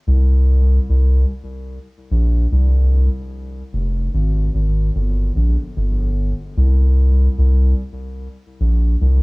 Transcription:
0.07 0.79 C2 loud
0.89 1.25 C2 medium
2.11 2.46 A#1 medium
2.52 3.09 C2 medium
3.73 4.09 F1 medium
4.13 4.49 G#1 loud
4.54 4.90 G#1 medium
4.95 5.30 G1 loud
5.35 5.57 A#1 medium
5.76 6.33 G1 medium
6.57 7.29 C2 loud
7.38 7.74 C2 loud
8.60 8.96 A#1 medium
9.01 9.23 C2 medium

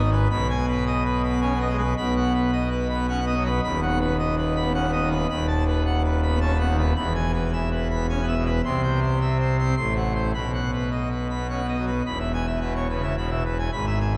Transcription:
0.00 0.27 G#1 medium
0.00 0.27 G#2 medium
0.00 0.15 D#3 medium
0.00 0.10 D#5 medium
0.12 0.28 B4 medium
0.30 1.93 B1 medium
0.30 1.93 B2 medium
0.30 0.47 B5 loud
0.49 0.66 G#5 medium
0.68 0.84 B4 medium
0.87 1.03 D#5 medium
1.05 1.22 B4 medium
1.23 1.40 B5 medium
1.28 1.40 B3 medium
1.41 1.53 C#4 medium
1.41 1.58 G#5 medium
1.55 1.68 B3 medium
1.60 1.77 D#5 medium
1.70 1.82 G#3 medium
1.79 1.94 B4 medium
1.97 3.60 B1 loud
1.97 3.60 B2 medium
1.97 2.14 B5 loud
2.16 2.32 F#5 medium
2.34 2.51 B4 medium
2.53 2.69 D#5 medium
2.71 2.88 B4 medium
2.90 3.06 B5 medium
2.94 3.07 B3 medium
3.08 3.20 C#4 medium
3.08 3.25 F#5 medium
3.22 3.34 B3 medium
3.27 3.43 D#5 medium
3.36 3.48 F#3 medium
3.45 3.61 B4 medium
3.64 5.26 D#1 medium
3.64 5.26 D#2 medium
3.64 3.80 B5 loud
3.82 3.98 F#5 medium
4.01 4.17 B4 medium
4.19 4.35 D#5 medium
4.38 4.54 B4 medium
4.56 4.72 B5 medium
4.60 4.73 B3 medium
4.74 4.86 C#4 medium
4.74 4.91 F#5 medium
4.88 5.00 B3 medium
4.93 5.09 D#5 medium
5.02 5.15 D#3 medium
5.11 5.27 B4 medium
5.30 6.92 D#1 medium
5.30 6.92 D#2 loud
5.30 5.46 B5 loud
5.47 5.64 A5 medium
5.67 5.83 B4 medium
5.86 6.02 F#5 medium
6.04 6.20 B4 medium
6.23 6.39 B5 medium
6.27 6.39 B3 medium
6.41 6.53 C#4 medium
6.41 6.57 A5 medium
6.55 6.67 B3 medium
6.60 6.76 F#5 medium
6.69 6.81 D#3 medium
6.78 6.93 B4 medium
6.96 8.60 E1 loud
6.96 8.60 E2 loud
6.96 7.13 B5 loud
7.15 7.31 G#5 medium
7.34 7.50 B4 medium
7.53 7.69 E5 medium
7.71 7.88 B4 medium
7.90 8.06 B5 medium
7.95 8.07 B3 medium
8.09 8.21 C#4 medium
8.09 8.25 G#5 medium
8.22 8.35 B3 medium
8.28 8.44 E5 medium
8.37 8.49 B2 medium
8.45 8.61 B4 medium
8.64 9.74 C2 loud
8.64 9.74 C3 loud
8.64 8.81 C6 loud
8.83 9.00 G5 medium
9.02 9.19 C5 medium
9.21 9.38 E5 medium
9.40 9.57 C5 medium
9.59 9.75 C6 medium
9.63 9.75 C4 medium
9.77 10.32 A1 medium
9.77 10.32 A2 medium
9.77 9.94 C6 medium
9.96 10.13 F#5 medium
10.15 10.31 C5 medium
10.34 12.01 B1 medium
10.34 12.02 B2 medium
10.34 10.51 B5 loud
10.53 10.70 F#5 medium
10.72 10.89 B4 medium
10.91 11.09 D#5 medium
11.10 11.27 B4 medium
11.30 11.47 B5 medium
11.35 11.47 B3 medium
11.49 11.61 C#4 soft
11.49 11.66 F#5 medium
11.64 11.76 B3 medium
11.68 11.85 D#5 medium
11.78 11.90 F#3 medium
11.87 12.03 B4 medium
12.06 13.69 E1 medium
12.06 13.69 E2 medium
12.06 12.18 B5 loud
12.20 12.32 E5 medium
12.34 12.46 G#5 medium
12.47 12.59 E5 medium
12.61 12.86 B2 medium
12.61 12.73 B4 medium
12.76 12.87 C#5 medium
12.89 13.13 C#3 medium
12.89 13.02 B4 medium
13.03 13.15 E5 medium
13.17 13.42 B2 medium
13.17 13.30 B5 medium
13.31 13.43 E5 medium
13.45 13.57 B4 medium
13.59 13.71 G#5 medium
13.73 14.17 G#1 medium
13.73 14.17 G#2 medium
13.73 13.85 B5 loud
13.87 13.99 E5 medium
14.01 14.13 G#5 medium

